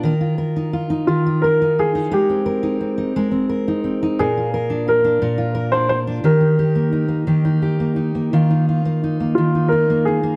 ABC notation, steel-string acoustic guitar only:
X:1
M:6/8
L:1/16
Q:3/8=58
K:Eb
V:1 name="Steel-string acoustic guitar"
[E,B] F B E F E [E,B] F B E F E | [A,B] C B E C E [A,B] C B E C E | [B,,B] F B D F D [B,,B] F B D F D | [E,G] E G B, E B, [E,G] E G B, E B, |
[E,F] E F B, E B, [E,F] E F B, E B, |]